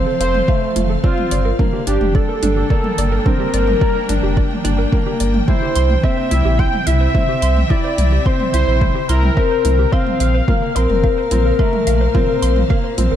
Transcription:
Already playing: string section F3 C4 A4 F5, soft synth lead C5
0.06 synth arpeggio sound A4
0.20 sub bass F1, felt piano C4, soft synth lead C5, synth arpeggio sound F5, closed hi-hat
0.34 mid tom
0.48 felt piano A3, synth arpeggio sound F5, kick
0.62 synth arpeggio sound C5
0.76 sub bass F1, synth arpeggio sound F4, closed hi-hat, mid tom
0.90 synth arpeggio sound A4
1.04 string section G3, felt piano C4, soft synth lead F4, synth arpeggio sound D5, kick
1.18 mid tom
1.31 sub bass G1, synth arpeggio sound D5, closed hi-hat
1.45 synth arpeggio sound A#4
1.59 felt piano A#3, synth arpeggio sound D4, kick, mid tom
1.63 string section D4
1.73 synth arpeggio sound G4
1.87 sub bass G1, felt piano D4, soft synth lead G4, synth arpeggio sound D5, closed hi-hat
2.01 sub bass F1, string section G5, mid tom
2.15 soft synth lead A4, synth arpeggio sound D5, kick
2.19 string section A#3
2.29 synth arpeggio sound A#4
2.43 sub bass G1, felt piano D4, synth arpeggio sound D4, closed hi-hat, mid tom
2.57 synth arpeggio sound G4
2.70 felt piano A#3, synth arpeggio sound D5, kick
2.84 mid tom
2.98 sub bass G1, synth arpeggio sound D5, closed hi-hat
3.12 synth arpeggio sound A#4
3.26 felt piano C4, synth arpeggio sound D4, soft synth lead A#4, kick, mid tom
3.40 synth arpeggio sound G4
3.54 sub bass G1, synth arpeggio sound D5, closed hi-hat
3.67 mid tom
3.81 felt piano A#3, synth arpeggio sound D5, kick
3.95 synth arpeggio sound A#4
4.09 sub bass G1, felt piano D4, synth arpeggio sound D4, closed hi-hat, mid tom
4.23 sub bass F1, synth arpeggio sound G4
4.37 synth arpeggio sound D5, kick
4.51 mid tom
4.64 sub bass G1, felt piano D4, synth arpeggio sound D5, closed hi-hat
4.78 synth arpeggio sound A#4
4.92 felt piano A#3, synth arpeggio sound D4, kick, mid tom
5.07 synth arpeggio sound G4
5.20 sub bass G1, synth arpeggio sound D5, closed hi-hat
5.34 mid tom
5.48 string section C3, felt piano E4, synth arpeggio sound E4, soft synth lead C5, kick, mid tom
5.59 string section C4, synth arpeggio sound G4
5.76 sub bass C2, synth arpeggio sound C6, closed hi-hat
5.90 mid tom
6.03 felt piano C4, soft synth lead E5, synth arpeggio sound E5, kick
6.17 synth arpeggio sound C5
6.30 sub bass C2, felt piano E4, synth arpeggio sound E4, string section E5, closed hi-hat, mid tom
6.45 sub bass A#1, synth arpeggio sound G4
6.59 soft synth lead G5, synth arpeggio sound C6, kick
6.73 mid tom
6.86 sub bass C2, felt piano E4, soft synth lead E5, synth arpeggio sound E5, closed hi-hat
7.01 synth arpeggio sound C5
7.14 felt piano C4, synth arpeggio sound E4, kick, mid tom
7.29 synth arpeggio sound G4
7.42 sub bass C2, synth arpeggio sound C6, closed hi-hat
7.56 mid tom
7.69 felt piano E4, soft synth lead D5, synth arpeggio sound E5, kick
7.84 synth arpeggio sound C5
7.98 sub bass C2, synth arpeggio sound E4, closed hi-hat, mid tom
8.12 synth arpeggio sound G4
8.25 felt piano C4, soft synth lead C5, synth arpeggio sound C6, kick
8.40 mid tom
8.53 sub bass C2, felt piano E4, soft synth lead C5, synth arpeggio sound E5, closed hi-hat
8.68 sub bass A#1, synth arpeggio sound C5
8.81 synth arpeggio sound E4, kick, mid tom
8.95 synth arpeggio sound G4
9.09 sub bass C2, felt piano E4, soft synth lead A#4, synth arpeggio sound C6, closed hi-hat
9.23 mid tom
9.37 felt piano C4, synth arpeggio sound E5, kick
9.51 synth arpeggio sound C5
9.65 sub bass C2, synth arpeggio sound E4, closed hi-hat, mid tom
9.79 synth arpeggio sound G4
9.92 string section A#2, felt piano C4, soft synth lead F5, synth arpeggio sound C6, kick
10.07 mid tom
10.20 sub bass A#1, synth arpeggio sound F5, closed hi-hat
10.34 synth arpeggio sound C5
10.44 string section F5, kick, mid tom
10.48 felt piano A#3, synth arpeggio sound F4
10.62 synth arpeggio sound A#4
10.75 sub bass A#1, felt piano C4, soft synth lead A#4, synth arpeggio sound C6, closed hi-hat
10.90 sub bass F1, mid tom
11.04 synth arpeggio sound F5, kick
11.18 synth arpeggio sound C5
11.31 sub bass A#1, felt piano C4, synth arpeggio sound F4, closed hi-hat, mid tom
11.36 string section C5
11.46 synth arpeggio sound A#4
11.59 felt piano A3, synth arpeggio sound C6, kick
11.73 mid tom
11.87 sub bass A#1, synth arpeggio sound F5, closed hi-hat
12.01 synth arpeggio sound C5
12.14 felt piano C4, synth arpeggio sound F4, kick, mid tom
12.28 synth arpeggio sound A#4
12.42 sub bass A#1, synth arpeggio sound C6, closed hi-hat
12.56 mid tom
12.70 felt piano A#3, synth arpeggio sound F5, kick
12.84 synth arpeggio sound C5
12.98 sub bass A#1, felt piano C4, synth arpeggio sound F4, closed hi-hat, mid tom
13.12 sub bass F1, synth arpeggio sound A#4

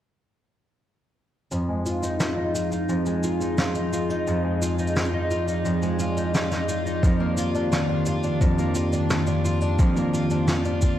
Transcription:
1.51 twelve-string acoustic guitar F2, ambient pad F3 D#4 G#4, cabasa
1.68 twelve-string acoustic guitar G#3
1.86 twelve-string acoustic guitar F4, cabasa
2.03 twelve-string acoustic guitar D#4, cabasa
2.20 twelve-string acoustic guitar F4, snare, cabasa
2.37 twelve-string acoustic guitar D#4
2.55 twelve-string acoustic guitar F4, cabasa
2.72 twelve-string acoustic guitar D#4, cabasa
2.89 twelve-string acoustic guitar F2, cabasa
3.06 twelve-string acoustic guitar G#3, cabasa
3.23 twelve-string acoustic guitar F4, cabasa
3.41 twelve-string acoustic guitar D#4, cabasa
3.58 twelve-string acoustic guitar F4, snare, cabasa
3.75 twelve-string acoustic guitar D#4, cabasa
3.92 twelve-string acoustic guitar F4, cabasa
4.10 twelve-string acoustic guitar D#4, cabasa
4.27 twelve-string acoustic guitar F2, ambient pad D5, cabasa
4.44 twelve-string acoustic guitar G#3
4.62 twelve-string acoustic guitar F4, cabasa
4.79 twelve-string acoustic guitar D#4, cabasa
4.87 cabasa
4.96 twelve-string acoustic guitar F4, snare, cabasa
5.05 cabasa
5.14 twelve-string acoustic guitar D#4
5.31 twelve-string acoustic guitar F4, cabasa
5.48 twelve-string acoustic guitar D#4, cabasa
5.65 twelve-string acoustic guitar F2, cabasa
5.82 twelve-string acoustic guitar G#3, cabasa
5.99 twelve-string acoustic guitar F4, cabasa
6.17 twelve-string acoustic guitar D#4, cabasa
6.34 twelve-string acoustic guitar F4, snare, cabasa
6.51 twelve-string acoustic guitar D#4, snare, cabasa
6.68 twelve-string acoustic guitar F4, cabasa
6.86 twelve-string acoustic guitar D#4, cabasa
7.03 twelve-string acoustic guitar F2, ambient pad F2 D#3 G4, kick, cabasa
7.20 twelve-string acoustic guitar A#3
7.37 twelve-string acoustic guitar F4, cabasa
7.55 twelve-string acoustic guitar D4, cabasa
7.72 twelve-string acoustic guitar F4, snare, cabasa
7.89 twelve-string acoustic guitar D4
8.06 twelve-string acoustic guitar F4, cabasa
8.23 twelve-string acoustic guitar D4, cabasa
8.41 twelve-string acoustic guitar F2, kick, cabasa
8.58 twelve-string acoustic guitar A#3, cabasa
8.75 twelve-string acoustic guitar F4, cabasa
8.93 twelve-string acoustic guitar D4, cabasa
9.10 twelve-string acoustic guitar F4, snare, cabasa
9.27 twelve-string acoustic guitar D4, cabasa
9.44 twelve-string acoustic guitar F4, cabasa
9.61 twelve-string acoustic guitar D4, cabasa
9.79 twelve-string acoustic guitar F2, kick, cabasa
9.96 twelve-string acoustic guitar A#3, cabasa
10.13 twelve-string acoustic guitar F4, cabasa
10.30 twelve-string acoustic guitar D4, cabasa
10.48 twelve-string acoustic guitar F4, snare, cabasa
10.65 twelve-string acoustic guitar D4, cabasa
10.82 twelve-string acoustic guitar F4, kick, cabasa

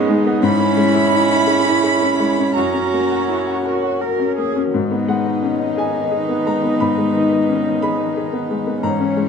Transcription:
Already playing: upright piano G#2 D#3 G#3 B3 C#4 D#4 G#4, viola G#3, analog synth pad G#3 D#4 D#5, cello C#4
0.09 upright piano G#3, cello D#4
0.26 upright piano B3
0.43 upright piano G#2, analog synth pad C#4 E4 C#5, viola C#4, cello E4, violin section B5
0.60 upright piano C#4
0.77 upright piano G#3
0.94 upright piano E4
1.12 upright piano D#4
1.29 upright piano E4
1.47 upright piano G#4
1.65 upright piano E4
1.83 upright piano G#4
2.02 upright piano C#4
2.19 upright piano G#3
2.38 upright piano C#4
2.56 upright piano F#2, viola C#4, analog synth pad F#4, cello F#4, violin section A#5
2.74 upright piano C#4
2.93 upright piano A#3
3.11 upright piano F#4
3.29 upright piano E4
3.46 upright piano F#4
3.65 cello F#4, upright piano A#4
3.83 upright piano F#4
4.01 cello A#4, upright piano A#4
4.20 upright piano C#4
4.38 upright piano A#3, cello G#4
4.56 upright piano C#4
4.73 upright piano G#2, cello D#3, analog synth pad B3 D#4 D#5, viola D#4, violin section B4
4.91 upright piano B3
5.08 upright piano G#3 F#5
5.26 upright piano D#4
5.43 upright piano C#4
5.60 upright piano D#4
5.77 upright piano G#4 G#5
5.94 upright piano D#4
6.12 upright piano G#4
6.29 upright piano B3
6.46 upright piano G#3 A#5
6.64 upright piano B3
6.80 upright piano G#2 B5
6.98 upright piano G#3
7.15 upright piano D#3
7.32 upright piano D#4
7.49 upright piano C#4
7.66 upright piano D#4
7.82 upright piano G#4 B5
8.00 upright piano D#4
8.17 upright piano G#4
8.33 upright piano B3
8.51 upright piano G#3
8.67 upright piano B3
8.82 upright piano G#2 A#5, cello E3, viola C#4, analog synth pad C#4 E4 C#5, violin section C#5
9.00 upright piano C#4
9.17 upright piano G#3

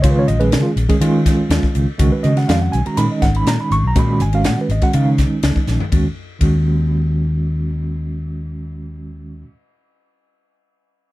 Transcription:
0.02 fretless electric bass C#3, tine electric piano D#3 G#3 C#4 F4 C#5, kick, hi-hat pedal, ride
0.11 tine electric piano B4
0.19 tine electric piano C#5
0.28 fretless electric bass A#1, tine electric piano D#5, hi-hat pedal, ride
0.40 tine electric piano D#3 G#3 C#4 G#4 B4, ride
0.52 fretless electric bass C#3, snare, hi-hat pedal, ride
0.62 tine electric piano F4
0.76 fretless electric bass A#1, hi-hat pedal, ride
0.89 tine electric piano D#3 G#3 C#4 G#4, kick, ride
1.00 fretless electric bass D#3, tine electric piano D#3 G#3 C#4 F4, hi-hat pedal, ride
1.26 kick, snare, hi-hat pedal, ride
1.37 muted fretless electric bass stroke
1.49 fretless electric bass D#2, snare, hi-hat pedal, ride
1.63 kick
1.75 fretless electric bass C#2, hi-hat pedal, ride
1.98 fretless electric bass C#2, tine electric piano D#3 G#3 C#4 F#4, kick, hi-hat pedal, ride
2.12 tine electric piano B4
2.23 fretless electric bass C#3, tine electric piano D#5, hi-hat pedal, ride
2.36 tine electric piano D#3 G#3 C#4 F#4 F#5, snare, ride
2.48 fretless electric bass F2, tine electric piano F5, snare, hi-hat pedal, ride
2.62 tine electric piano F#5
2.72 fretless electric bass B1, tine electric piano G#5, hi-hat pedal, ride
2.85 tine electric piano D#3 G#3 C#4 F#4 A#5, ride
2.97 fretless electric bass A#2, tine electric piano D#3 G#3 C#4 D#4 B5, hi-hat pedal, ride
3.12 tine electric piano D#5
3.22 fretless electric bass G#1, tine electric piano F#5, kick, snare, hi-hat pedal, ride
3.35 tine electric piano B5, ride
3.46 fretless electric bass A#2, tine electric piano A#5, snare, hi-hat pedal, ride
3.61 tine electric piano B5
3.70 fretless electric bass G#1, tine electric piano C#6, hi-hat pedal, ride
3.83 fretless electric bass B1
3.88 tine electric piano A#5
3.96 fretless electric bass A#2, tine electric piano D#3 G#3 C#4 F#4 B5, kick, hi-hat pedal, ride
4.19 fretless electric bass G#1, tine electric piano G#5, hi-hat pedal, ride
4.33 tine electric piano D#3 G#3 C#4 F#4 F5, ride
4.44 fretless electric bass A#2, tine electric piano F#5, snare, hi-hat pedal, ride
4.61 tine electric piano B4
4.69 fretless electric bass G#1, tine electric piano D#5, hi-hat pedal, ride
4.82 tine electric piano D#3 G#3 C#4 F#4 F#5, kick, ride
4.93 fretless electric bass C#3, tine electric piano D#3 G#3 C#4 D#4 F5, hi-hat pedal, ride
5.18 kick, snare, hi-hat pedal, ride
5.31 muted fretless electric bass stroke
5.43 fretless electric bass C#2, snare, hi-hat pedal, ride
5.56 muted fretless electric bass stroke, kick
5.67 fretless electric bass A#1, snare, hi-hat pedal
5.80 floor tom
5.90 fretless electric bass D#2, tine electric piano D#3 G#3 C#4, kick, ride
5.94 tine electric piano F#4
6.39 fretless electric bass D#2, tine electric piano D#3 G#3 C#4, kick, ride
6.43 tine electric piano F#4

